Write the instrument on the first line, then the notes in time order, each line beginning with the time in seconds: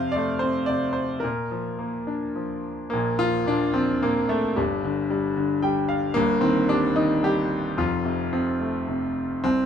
grand piano
Already playing: F2 C3 C5 F5
0.12 D5
0.16 A3
0.39 C4 C5
0.66 C3 D5
0.93 C5
1.20 A#2 A#4
1.51 F3
1.79 A#3
2.07 D4
2.35 F3
2.90 A#1 A#2 A#3
3.19 F3 F4
3.46 A#2 D4
3.74 F3 C4
4.02 A#2 A#3
4.29 A3
4.56 G1 G2 G3
4.84 D3
5.10 G3
5.36 D3
5.62 G3 G5
5.89 F5
6.14 G1 G2 A#3
6.41 D#3 C4
6.69 G3 D4
6.96 D#3 D#4
7.23 G3 G4
7.77 F1 F2 F4
8.05 C3
8.33 F3 C4
8.60 A3
8.88 C3
9.44 C2 C4